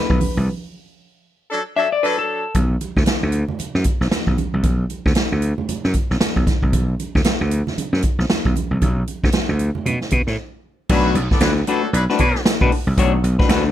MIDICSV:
0, 0, Header, 1, 7, 480
1, 0, Start_track
1, 0, Key_signature, 2, "minor"
1, 0, Tempo, 521286
1, 428, Time_signature, 4, 2, 24, 8
1, 12630, End_track
2, 0, Start_track
2, 0, Title_t, "Clean electric guitar"
2, 0, Program_c, 0, 27
2, 0, Note_on_c, 0, 71, 82
2, 471, Note_off_c, 0, 71, 0
2, 1625, Note_on_c, 0, 76, 121
2, 1768, Note_off_c, 0, 76, 0
2, 1772, Note_on_c, 0, 74, 92
2, 1870, Note_off_c, 0, 74, 0
2, 1870, Note_on_c, 0, 71, 93
2, 2002, Note_off_c, 0, 71, 0
2, 2015, Note_on_c, 0, 69, 80
2, 2325, Note_off_c, 0, 69, 0
2, 10034, Note_on_c, 0, 57, 91
2, 10039, Note_on_c, 0, 62, 89
2, 10041, Note_on_c, 0, 66, 93
2, 10047, Note_on_c, 0, 71, 90
2, 10259, Note_off_c, 0, 57, 0
2, 10262, Note_off_c, 0, 62, 0
2, 10263, Note_off_c, 0, 66, 0
2, 10266, Note_off_c, 0, 71, 0
2, 10751, Note_on_c, 0, 57, 87
2, 10756, Note_on_c, 0, 62, 79
2, 10760, Note_on_c, 0, 66, 93
2, 10762, Note_on_c, 0, 71, 85
2, 10887, Note_off_c, 0, 71, 0
2, 10891, Note_off_c, 0, 66, 0
2, 10895, Note_off_c, 0, 62, 0
2, 10916, Note_off_c, 0, 57, 0
2, 11139, Note_on_c, 0, 71, 83
2, 11143, Note_on_c, 0, 66, 83
2, 11147, Note_on_c, 0, 62, 87
2, 11152, Note_on_c, 0, 57, 76
2, 11228, Note_off_c, 0, 57, 0
2, 11231, Note_off_c, 0, 62, 0
2, 11231, Note_off_c, 0, 66, 0
2, 11234, Note_off_c, 0, 71, 0
2, 11615, Note_on_c, 0, 71, 81
2, 11619, Note_on_c, 0, 66, 74
2, 11625, Note_on_c, 0, 62, 68
2, 11626, Note_on_c, 0, 57, 67
2, 11707, Note_off_c, 0, 57, 0
2, 11710, Note_off_c, 0, 62, 0
2, 11711, Note_off_c, 0, 66, 0
2, 11713, Note_off_c, 0, 71, 0
2, 11949, Note_on_c, 0, 57, 86
2, 11956, Note_on_c, 0, 62, 91
2, 11960, Note_on_c, 0, 66, 95
2, 11963, Note_on_c, 0, 73, 97
2, 12091, Note_off_c, 0, 66, 0
2, 12095, Note_off_c, 0, 73, 0
2, 12098, Note_off_c, 0, 62, 0
2, 12113, Note_off_c, 0, 57, 0
2, 12329, Note_on_c, 0, 71, 72
2, 12334, Note_on_c, 0, 66, 56
2, 12337, Note_on_c, 0, 62, 67
2, 12342, Note_on_c, 0, 57, 52
2, 12414, Note_off_c, 0, 57, 0
2, 12416, Note_off_c, 0, 62, 0
2, 12421, Note_off_c, 0, 71, 0
2, 12424, Note_off_c, 0, 66, 0
2, 12425, Note_on_c, 0, 57, 80
2, 12427, Note_on_c, 0, 62, 93
2, 12434, Note_on_c, 0, 66, 91
2, 12436, Note_on_c, 0, 71, 93
2, 12560, Note_off_c, 0, 71, 0
2, 12565, Note_off_c, 0, 66, 0
2, 12570, Note_off_c, 0, 62, 0
2, 12590, Note_off_c, 0, 57, 0
2, 12630, End_track
3, 0, Start_track
3, 0, Title_t, "Horn section"
3, 0, Program_c, 1, 61
3, 1386, Note_on_c, 1, 69, 101
3, 1387, Note_on_c, 1, 62, 78
3, 1388, Note_on_c, 1, 54, 95
3, 1478, Note_off_c, 1, 69, 0
3, 1479, Note_off_c, 1, 54, 0
3, 1479, Note_off_c, 1, 62, 0
3, 1626, Note_on_c, 1, 54, 84
3, 1629, Note_on_c, 1, 62, 78
3, 1630, Note_on_c, 1, 69, 89
3, 1718, Note_off_c, 1, 54, 0
3, 1720, Note_off_c, 1, 62, 0
3, 1721, Note_off_c, 1, 69, 0
3, 1874, Note_on_c, 1, 69, 112
3, 1877, Note_on_c, 1, 62, 100
3, 1879, Note_on_c, 1, 54, 108
3, 2235, Note_off_c, 1, 69, 0
3, 2237, Note_off_c, 1, 62, 0
3, 2238, Note_off_c, 1, 54, 0
3, 10038, Note_on_c, 1, 54, 105
3, 10038, Note_on_c, 1, 71, 116
3, 10041, Note_on_c, 1, 62, 97
3, 10229, Note_off_c, 1, 54, 0
3, 10229, Note_off_c, 1, 71, 0
3, 10231, Note_off_c, 1, 62, 0
3, 10424, Note_on_c, 1, 74, 88
3, 10425, Note_on_c, 1, 59, 82
3, 10426, Note_on_c, 1, 69, 82
3, 10499, Note_off_c, 1, 74, 0
3, 10500, Note_off_c, 1, 59, 0
3, 10500, Note_off_c, 1, 69, 0
3, 10509, Note_on_c, 1, 62, 87
3, 10510, Note_on_c, 1, 54, 88
3, 10513, Note_on_c, 1, 71, 87
3, 10597, Note_off_c, 1, 62, 0
3, 10598, Note_off_c, 1, 54, 0
3, 10600, Note_off_c, 1, 71, 0
3, 10752, Note_on_c, 1, 62, 97
3, 10753, Note_on_c, 1, 69, 109
3, 10756, Note_on_c, 1, 54, 92
3, 10944, Note_off_c, 1, 62, 0
3, 10945, Note_off_c, 1, 69, 0
3, 10947, Note_off_c, 1, 54, 0
3, 10992, Note_on_c, 1, 54, 86
3, 10993, Note_on_c, 1, 71, 101
3, 10995, Note_on_c, 1, 62, 90
3, 11079, Note_off_c, 1, 54, 0
3, 11079, Note_off_c, 1, 71, 0
3, 11081, Note_off_c, 1, 62, 0
3, 11228, Note_on_c, 1, 71, 106
3, 11231, Note_on_c, 1, 54, 110
3, 11233, Note_on_c, 1, 62, 106
3, 11421, Note_off_c, 1, 71, 0
3, 11423, Note_off_c, 1, 54, 0
3, 11424, Note_off_c, 1, 62, 0
3, 12630, End_track
4, 0, Start_track
4, 0, Title_t, "Slap bass"
4, 0, Program_c, 2, 36
4, 91, Note_on_c, 2, 35, 86
4, 166, Note_off_c, 2, 35, 0
4, 341, Note_on_c, 2, 36, 91
4, 433, Note_off_c, 2, 36, 0
4, 2347, Note_on_c, 2, 35, 78
4, 2532, Note_off_c, 2, 35, 0
4, 2731, Note_on_c, 2, 38, 81
4, 2805, Note_off_c, 2, 38, 0
4, 2973, Note_on_c, 2, 38, 87
4, 3158, Note_off_c, 2, 38, 0
4, 3451, Note_on_c, 2, 42, 77
4, 3526, Note_off_c, 2, 42, 0
4, 3690, Note_on_c, 2, 35, 68
4, 3765, Note_off_c, 2, 35, 0
4, 3933, Note_on_c, 2, 35, 76
4, 4007, Note_off_c, 2, 35, 0
4, 4176, Note_on_c, 2, 36, 77
4, 4269, Note_off_c, 2, 36, 0
4, 4269, Note_on_c, 2, 35, 75
4, 4455, Note_off_c, 2, 35, 0
4, 4656, Note_on_c, 2, 38, 84
4, 4730, Note_off_c, 2, 38, 0
4, 4900, Note_on_c, 2, 38, 88
4, 5084, Note_off_c, 2, 38, 0
4, 5383, Note_on_c, 2, 42, 74
4, 5455, Note_off_c, 2, 42, 0
4, 5623, Note_on_c, 2, 35, 72
4, 5695, Note_off_c, 2, 35, 0
4, 5859, Note_on_c, 2, 35, 88
4, 5933, Note_off_c, 2, 35, 0
4, 6102, Note_on_c, 2, 36, 76
4, 6198, Note_off_c, 2, 36, 0
4, 6198, Note_on_c, 2, 35, 82
4, 6382, Note_off_c, 2, 35, 0
4, 6585, Note_on_c, 2, 38, 79
4, 6657, Note_off_c, 2, 38, 0
4, 6822, Note_on_c, 2, 38, 89
4, 7007, Note_off_c, 2, 38, 0
4, 7299, Note_on_c, 2, 42, 76
4, 7374, Note_off_c, 2, 42, 0
4, 7536, Note_on_c, 2, 35, 72
4, 7612, Note_off_c, 2, 35, 0
4, 7787, Note_on_c, 2, 35, 78
4, 7859, Note_off_c, 2, 35, 0
4, 8018, Note_on_c, 2, 36, 72
4, 8093, Note_off_c, 2, 36, 0
4, 8121, Note_on_c, 2, 35, 87
4, 8305, Note_off_c, 2, 35, 0
4, 8507, Note_on_c, 2, 38, 91
4, 8579, Note_off_c, 2, 38, 0
4, 8738, Note_on_c, 2, 38, 94
4, 8924, Note_off_c, 2, 38, 0
4, 9075, Note_on_c, 2, 47, 82
4, 9187, Note_off_c, 2, 47, 0
4, 9317, Note_on_c, 2, 47, 107
4, 9428, Note_off_c, 2, 47, 0
4, 9456, Note_on_c, 2, 45, 73
4, 9532, Note_off_c, 2, 45, 0
4, 10034, Note_on_c, 2, 35, 97
4, 10219, Note_off_c, 2, 35, 0
4, 10264, Note_on_c, 2, 35, 113
4, 10379, Note_off_c, 2, 35, 0
4, 10502, Note_on_c, 2, 38, 94
4, 10692, Note_off_c, 2, 38, 0
4, 10985, Note_on_c, 2, 35, 87
4, 11099, Note_off_c, 2, 35, 0
4, 11232, Note_on_c, 2, 47, 113
4, 11343, Note_off_c, 2, 47, 0
4, 11613, Note_on_c, 2, 47, 92
4, 11688, Note_off_c, 2, 47, 0
4, 11849, Note_on_c, 2, 36, 87
4, 11925, Note_off_c, 2, 36, 0
4, 11948, Note_on_c, 2, 35, 101
4, 12133, Note_off_c, 2, 35, 0
4, 12187, Note_on_c, 2, 35, 104
4, 12298, Note_off_c, 2, 35, 0
4, 12420, Note_on_c, 2, 38, 89
4, 12607, Note_off_c, 2, 38, 0
4, 12630, End_track
5, 0, Start_track
5, 0, Title_t, "Muted clean electric guitar strokes"
5, 10419, Note_on_c, 9, 29, 37
5, 10511, Note_off_c, 9, 29, 0
5, 10513, Note_on_c, 9, 29, 50
5, 10605, Note_off_c, 9, 29, 0
5, 10655, Note_on_c, 9, 29, 43
5, 10747, Note_off_c, 9, 29, 0
5, 10898, Note_on_c, 9, 29, 38
5, 10990, Note_off_c, 9, 29, 0
5, 10994, Note_on_c, 9, 29, 46
5, 11086, Note_off_c, 9, 29, 0
5, 11239, Note_on_c, 9, 29, 42
5, 11331, Note_off_c, 9, 29, 0
5, 11378, Note_on_c, 9, 29, 44
5, 11470, Note_off_c, 9, 29, 0
5, 11477, Note_on_c, 9, 29, 40
5, 11569, Note_off_c, 9, 29, 0
5, 11718, Note_on_c, 9, 29, 35
5, 11810, Note_off_c, 9, 29, 0
5, 11855, Note_on_c, 9, 29, 49
5, 11947, Note_off_c, 9, 29, 0
5, 12099, Note_on_c, 9, 29, 52
5, 12191, Note_off_c, 9, 29, 0
5, 12196, Note_on_c, 9, 29, 47
5, 12288, Note_off_c, 9, 29, 0
5, 12571, Note_on_c, 9, 29, 37
5, 12630, Note_off_c, 9, 29, 0
5, 12630, End_track
6, 0, Start_track
6, 0, Title_t, "Muted slap bass strokes"
6, 3313, Note_on_c, 9, 29, 40
6, 3405, Note_off_c, 9, 29, 0
6, 3789, Note_on_c, 9, 29, 43
6, 3881, Note_off_c, 9, 29, 0
6, 5237, Note_on_c, 9, 29, 40
6, 5329, Note_off_c, 9, 29, 0
6, 5716, Note_on_c, 9, 29, 45
6, 5808, Note_off_c, 9, 29, 0
6, 6681, Note_on_c, 9, 29, 38
6, 6773, Note_off_c, 9, 29, 0
6, 7161, Note_on_c, 9, 29, 43
6, 7253, Note_off_c, 9, 29, 0
6, 12630, End_track
7, 0, Start_track
7, 0, Title_t, "Drums"
7, 91, Note_on_c, 9, 36, 96
7, 183, Note_off_c, 9, 36, 0
7, 190, Note_on_c, 9, 63, 88
7, 192, Note_on_c, 9, 46, 66
7, 282, Note_off_c, 9, 63, 0
7, 284, Note_off_c, 9, 46, 0
7, 2344, Note_on_c, 9, 42, 67
7, 2345, Note_on_c, 9, 62, 59
7, 2346, Note_on_c, 9, 36, 81
7, 2437, Note_off_c, 9, 42, 0
7, 2437, Note_off_c, 9, 62, 0
7, 2438, Note_off_c, 9, 36, 0
7, 2584, Note_on_c, 9, 42, 56
7, 2588, Note_on_c, 9, 62, 46
7, 2676, Note_off_c, 9, 42, 0
7, 2680, Note_off_c, 9, 62, 0
7, 2731, Note_on_c, 9, 36, 73
7, 2733, Note_on_c, 9, 38, 38
7, 2817, Note_on_c, 9, 42, 79
7, 2819, Note_on_c, 9, 63, 67
7, 2823, Note_off_c, 9, 36, 0
7, 2826, Note_off_c, 9, 38, 0
7, 2828, Note_on_c, 9, 38, 88
7, 2909, Note_off_c, 9, 42, 0
7, 2911, Note_off_c, 9, 63, 0
7, 2920, Note_off_c, 9, 38, 0
7, 3057, Note_on_c, 9, 42, 60
7, 3149, Note_off_c, 9, 42, 0
7, 3209, Note_on_c, 9, 64, 75
7, 3301, Note_off_c, 9, 64, 0
7, 3304, Note_on_c, 9, 62, 45
7, 3310, Note_on_c, 9, 42, 80
7, 3396, Note_off_c, 9, 62, 0
7, 3402, Note_off_c, 9, 42, 0
7, 3450, Note_on_c, 9, 38, 30
7, 3537, Note_on_c, 9, 42, 70
7, 3542, Note_off_c, 9, 38, 0
7, 3547, Note_on_c, 9, 36, 74
7, 3550, Note_on_c, 9, 62, 36
7, 3629, Note_off_c, 9, 42, 0
7, 3639, Note_off_c, 9, 36, 0
7, 3642, Note_off_c, 9, 62, 0
7, 3693, Note_on_c, 9, 38, 26
7, 3785, Note_off_c, 9, 38, 0
7, 3789, Note_on_c, 9, 38, 112
7, 3790, Note_on_c, 9, 63, 64
7, 3797, Note_on_c, 9, 42, 87
7, 3881, Note_off_c, 9, 38, 0
7, 3882, Note_off_c, 9, 63, 0
7, 3889, Note_off_c, 9, 42, 0
7, 3932, Note_on_c, 9, 63, 53
7, 3933, Note_on_c, 9, 36, 87
7, 4024, Note_off_c, 9, 63, 0
7, 4025, Note_off_c, 9, 36, 0
7, 4033, Note_on_c, 9, 63, 79
7, 4034, Note_on_c, 9, 42, 56
7, 4125, Note_off_c, 9, 63, 0
7, 4126, Note_off_c, 9, 42, 0
7, 4267, Note_on_c, 9, 42, 71
7, 4269, Note_on_c, 9, 36, 88
7, 4269, Note_on_c, 9, 62, 59
7, 4359, Note_off_c, 9, 42, 0
7, 4361, Note_off_c, 9, 36, 0
7, 4362, Note_off_c, 9, 62, 0
7, 4509, Note_on_c, 9, 42, 54
7, 4519, Note_on_c, 9, 62, 40
7, 4601, Note_off_c, 9, 42, 0
7, 4611, Note_off_c, 9, 62, 0
7, 4656, Note_on_c, 9, 36, 80
7, 4662, Note_on_c, 9, 38, 33
7, 4741, Note_on_c, 9, 42, 76
7, 4747, Note_on_c, 9, 63, 62
7, 4748, Note_off_c, 9, 36, 0
7, 4752, Note_off_c, 9, 38, 0
7, 4752, Note_on_c, 9, 38, 94
7, 4834, Note_off_c, 9, 42, 0
7, 4839, Note_off_c, 9, 63, 0
7, 4844, Note_off_c, 9, 38, 0
7, 4989, Note_on_c, 9, 42, 65
7, 5081, Note_off_c, 9, 42, 0
7, 5138, Note_on_c, 9, 64, 74
7, 5230, Note_off_c, 9, 64, 0
7, 5235, Note_on_c, 9, 42, 79
7, 5239, Note_on_c, 9, 62, 49
7, 5239, Note_on_c, 9, 64, 66
7, 5327, Note_off_c, 9, 42, 0
7, 5331, Note_off_c, 9, 62, 0
7, 5331, Note_off_c, 9, 64, 0
7, 5377, Note_on_c, 9, 38, 33
7, 5465, Note_on_c, 9, 42, 64
7, 5469, Note_off_c, 9, 38, 0
7, 5474, Note_on_c, 9, 36, 66
7, 5474, Note_on_c, 9, 62, 35
7, 5557, Note_off_c, 9, 42, 0
7, 5566, Note_off_c, 9, 36, 0
7, 5566, Note_off_c, 9, 62, 0
7, 5620, Note_on_c, 9, 38, 26
7, 5712, Note_off_c, 9, 38, 0
7, 5714, Note_on_c, 9, 38, 115
7, 5721, Note_on_c, 9, 63, 55
7, 5722, Note_on_c, 9, 42, 92
7, 5806, Note_off_c, 9, 38, 0
7, 5813, Note_off_c, 9, 63, 0
7, 5814, Note_off_c, 9, 42, 0
7, 5859, Note_on_c, 9, 36, 85
7, 5868, Note_on_c, 9, 63, 54
7, 5951, Note_off_c, 9, 36, 0
7, 5955, Note_on_c, 9, 38, 34
7, 5956, Note_on_c, 9, 36, 99
7, 5957, Note_off_c, 9, 63, 0
7, 5957, Note_on_c, 9, 63, 74
7, 5958, Note_on_c, 9, 42, 59
7, 6047, Note_off_c, 9, 38, 0
7, 6049, Note_off_c, 9, 36, 0
7, 6049, Note_off_c, 9, 63, 0
7, 6050, Note_off_c, 9, 42, 0
7, 6101, Note_on_c, 9, 36, 83
7, 6193, Note_off_c, 9, 36, 0
7, 6197, Note_on_c, 9, 42, 78
7, 6198, Note_on_c, 9, 36, 93
7, 6199, Note_on_c, 9, 62, 62
7, 6290, Note_off_c, 9, 36, 0
7, 6290, Note_off_c, 9, 42, 0
7, 6291, Note_off_c, 9, 62, 0
7, 6441, Note_on_c, 9, 42, 65
7, 6445, Note_on_c, 9, 62, 45
7, 6533, Note_off_c, 9, 42, 0
7, 6537, Note_off_c, 9, 62, 0
7, 6585, Note_on_c, 9, 36, 74
7, 6590, Note_on_c, 9, 38, 35
7, 6670, Note_on_c, 9, 42, 82
7, 6675, Note_on_c, 9, 63, 69
7, 6677, Note_off_c, 9, 36, 0
7, 6680, Note_off_c, 9, 38, 0
7, 6680, Note_on_c, 9, 38, 97
7, 6762, Note_off_c, 9, 42, 0
7, 6767, Note_off_c, 9, 63, 0
7, 6772, Note_off_c, 9, 38, 0
7, 6917, Note_on_c, 9, 42, 67
7, 7009, Note_off_c, 9, 42, 0
7, 7062, Note_on_c, 9, 64, 71
7, 7067, Note_on_c, 9, 38, 32
7, 7154, Note_off_c, 9, 64, 0
7, 7159, Note_off_c, 9, 38, 0
7, 7163, Note_on_c, 9, 62, 51
7, 7164, Note_on_c, 9, 42, 78
7, 7255, Note_off_c, 9, 62, 0
7, 7256, Note_off_c, 9, 42, 0
7, 7307, Note_on_c, 9, 38, 32
7, 7389, Note_on_c, 9, 42, 62
7, 7399, Note_off_c, 9, 38, 0
7, 7400, Note_on_c, 9, 36, 72
7, 7481, Note_off_c, 9, 42, 0
7, 7492, Note_off_c, 9, 36, 0
7, 7545, Note_on_c, 9, 38, 24
7, 7637, Note_off_c, 9, 38, 0
7, 7639, Note_on_c, 9, 38, 112
7, 7640, Note_on_c, 9, 63, 63
7, 7647, Note_on_c, 9, 42, 84
7, 7731, Note_off_c, 9, 38, 0
7, 7732, Note_off_c, 9, 63, 0
7, 7739, Note_off_c, 9, 42, 0
7, 7784, Note_on_c, 9, 36, 84
7, 7788, Note_on_c, 9, 63, 58
7, 7876, Note_off_c, 9, 36, 0
7, 7879, Note_off_c, 9, 63, 0
7, 7879, Note_on_c, 9, 63, 80
7, 7885, Note_on_c, 9, 42, 57
7, 7971, Note_off_c, 9, 63, 0
7, 7977, Note_off_c, 9, 42, 0
7, 8117, Note_on_c, 9, 42, 68
7, 8120, Note_on_c, 9, 36, 92
7, 8120, Note_on_c, 9, 62, 59
7, 8209, Note_off_c, 9, 42, 0
7, 8212, Note_off_c, 9, 36, 0
7, 8212, Note_off_c, 9, 62, 0
7, 8356, Note_on_c, 9, 42, 60
7, 8364, Note_on_c, 9, 62, 40
7, 8448, Note_off_c, 9, 42, 0
7, 8456, Note_off_c, 9, 62, 0
7, 8504, Note_on_c, 9, 36, 83
7, 8507, Note_on_c, 9, 38, 37
7, 8585, Note_on_c, 9, 42, 77
7, 8596, Note_off_c, 9, 36, 0
7, 8596, Note_off_c, 9, 38, 0
7, 8596, Note_on_c, 9, 38, 99
7, 8596, Note_on_c, 9, 63, 72
7, 8678, Note_off_c, 9, 42, 0
7, 8688, Note_off_c, 9, 38, 0
7, 8689, Note_off_c, 9, 63, 0
7, 8832, Note_on_c, 9, 42, 65
7, 8924, Note_off_c, 9, 42, 0
7, 8978, Note_on_c, 9, 64, 76
7, 9070, Note_off_c, 9, 64, 0
7, 9080, Note_on_c, 9, 42, 70
7, 9080, Note_on_c, 9, 62, 49
7, 9080, Note_on_c, 9, 64, 68
7, 9172, Note_off_c, 9, 42, 0
7, 9172, Note_off_c, 9, 62, 0
7, 9172, Note_off_c, 9, 64, 0
7, 9219, Note_on_c, 9, 38, 31
7, 9304, Note_on_c, 9, 42, 75
7, 9311, Note_off_c, 9, 38, 0
7, 9316, Note_on_c, 9, 36, 60
7, 9316, Note_on_c, 9, 62, 33
7, 9396, Note_off_c, 9, 42, 0
7, 9408, Note_off_c, 9, 36, 0
7, 9408, Note_off_c, 9, 62, 0
7, 9455, Note_on_c, 9, 38, 28
7, 9547, Note_off_c, 9, 38, 0
7, 10031, Note_on_c, 9, 49, 88
7, 10034, Note_on_c, 9, 36, 105
7, 10123, Note_off_c, 9, 49, 0
7, 10126, Note_off_c, 9, 36, 0
7, 10269, Note_on_c, 9, 42, 70
7, 10361, Note_off_c, 9, 42, 0
7, 10417, Note_on_c, 9, 36, 84
7, 10418, Note_on_c, 9, 38, 38
7, 10501, Note_on_c, 9, 42, 90
7, 10509, Note_off_c, 9, 36, 0
7, 10510, Note_off_c, 9, 38, 0
7, 10511, Note_on_c, 9, 38, 111
7, 10593, Note_off_c, 9, 42, 0
7, 10603, Note_off_c, 9, 38, 0
7, 10746, Note_on_c, 9, 42, 77
7, 10838, Note_off_c, 9, 42, 0
7, 10995, Note_on_c, 9, 42, 90
7, 11087, Note_off_c, 9, 42, 0
7, 11137, Note_on_c, 9, 38, 37
7, 11221, Note_on_c, 9, 42, 75
7, 11229, Note_off_c, 9, 38, 0
7, 11230, Note_on_c, 9, 36, 71
7, 11313, Note_off_c, 9, 42, 0
7, 11322, Note_off_c, 9, 36, 0
7, 11374, Note_on_c, 9, 38, 31
7, 11466, Note_off_c, 9, 38, 0
7, 11468, Note_on_c, 9, 38, 127
7, 11476, Note_on_c, 9, 42, 106
7, 11560, Note_off_c, 9, 38, 0
7, 11568, Note_off_c, 9, 42, 0
7, 11613, Note_on_c, 9, 36, 100
7, 11705, Note_off_c, 9, 36, 0
7, 11712, Note_on_c, 9, 46, 74
7, 11804, Note_off_c, 9, 46, 0
7, 11948, Note_on_c, 9, 36, 102
7, 11948, Note_on_c, 9, 42, 89
7, 12040, Note_off_c, 9, 36, 0
7, 12041, Note_off_c, 9, 42, 0
7, 12191, Note_on_c, 9, 42, 70
7, 12283, Note_off_c, 9, 42, 0
7, 12334, Note_on_c, 9, 36, 99
7, 12341, Note_on_c, 9, 38, 41
7, 12424, Note_on_c, 9, 42, 86
7, 12426, Note_off_c, 9, 36, 0
7, 12433, Note_off_c, 9, 38, 0
7, 12434, Note_on_c, 9, 38, 121
7, 12516, Note_off_c, 9, 42, 0
7, 12526, Note_off_c, 9, 38, 0
7, 12630, End_track
0, 0, End_of_file